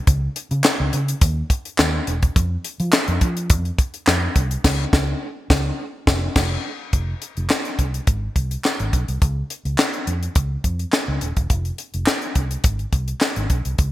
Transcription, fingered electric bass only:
0.08 C#2
0.51 C#3
0.80 C#2
0.93 C#3
1.22 D#2
1.79 D#2
2.08 E1
2.36 F2
2.80 F3
3.08 F2
3.21 F3
3.50 F2
4.07 F2
4.36 C2
4.64 C#2
4.93 C#2
5.50 C#2
6.07 F1
6.36 F1
6.93 F1
7.37 F1
7.79 C2
8.07 G#1
8.36 C2
8.80 G#1
8.93 B1
9.08 C2
9.22 C#2
9.65 C#2
10.07 F2
10.36 C#2
10.64 F2
11.08 C#2
11.22 D#1
11.37 E1
11.50 F1
11.94 F1
12.36 C2
12.64 G#1
12.93 C2
13.37 G#1
13.50 B1
13.65 C2
13.79 C#2

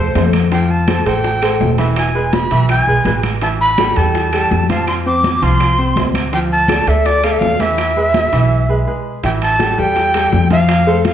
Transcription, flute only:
Already playing: C5
0.52 G5
0.71 A5
1.07 G5
1.98 G#5
2.33 B5
2.70 G#5
3.43 A5
3.61 B5
3.97 A5
4.88 C6
5.07 D6
5.43 C6
6.34 G5
6.52 A5
6.88 E5
7.06 D5
7.24 F5
7.32 E5
7.38 F5
7.61 E5
9.24 G5
9.43 A5
9.79 G5
10.52 F5
11.06 F5

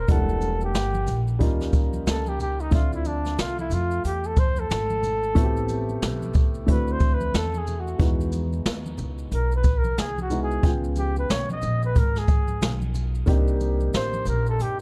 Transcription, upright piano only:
0.08 G3 A#3 D4 E4 F#5
1.39 G3 A#3 C#4 D#4 F4
2.71 A3 C4 D4 F4 E5
5.35 A3 B3 C4 E4 F#4
5.44 G4
6.66 A3 C4 D4 E4 F#4
7.98 G#3 B3 D#4 E4 F#4
10.30 G#3 B3 D#4 E4 F#4
10.62 G#3 B3 C#4 F4 G5
13.26 A#3 C4 D4 D#4 G4

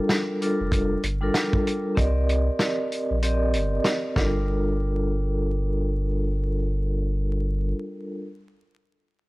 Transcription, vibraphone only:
Already playing: G3 D4 F4 A4 A#4
0.41 G3 D4 F4 A4 A#4
1.21 G3 D4 F4 A4 A#4
1.95 C4 G4 A#4 D5 D#5
3.22 C4 G4 A#4 D5 D#5
4.16 G3 D4 F4 A4 A#4

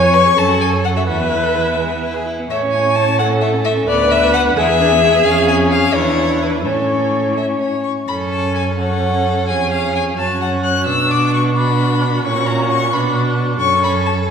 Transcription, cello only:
Already playing: F2
0.38 F#2
1.08 E2
2.50 A2
3.88 D2
4.56 E2
5.25 F2
5.95 E2
6.66 A2
8.09 F#2
9.49 F2
10.17 F#2
10.86 B2
12.24 A#2
12.92 B2
13.61 F#2

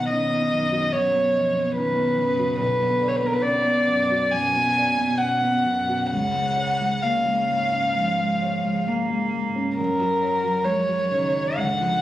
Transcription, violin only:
0.09 D#5
0.92 C#5
1.76 B4
2.59 B4
3.08 C#5
3.16 B4
3.26 A#4
3.33 B4
3.42 D5
4.31 G#5
5.19 F#5
6.11 F#5
7.03 F5
9.78 A#4
10.64 C#5
11.56 F#5

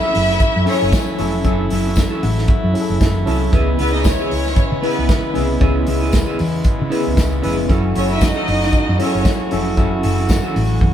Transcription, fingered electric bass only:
0.16 F#1
0.56 F#2
0.82 F#1
1.19 F1
1.45 F#1
1.71 F#1
2.23 A1
2.64 F#2
2.90 F#1
3.01 F#1
3.27 C2
3.53 C#2
3.79 C#2
4.32 C#2
4.57 muted fingered electric bass stroke
4.72 C#3
4.99 C#2
5.36 C2
5.61 C#2
5.88 C#2
6.40 E2
6.65 muted fingered electric bass stroke
6.81 C#3
7.07 C#2
7.18 C#2
7.45 F1
7.70 F#1
7.96 F#1
8.48 F#1
8.74 muted fingered electric bass stroke
8.89 F#2
9.15 F#1
9.52 F1
9.78 F#1
10.04 F#1
10.56 A1
10.82 F#2

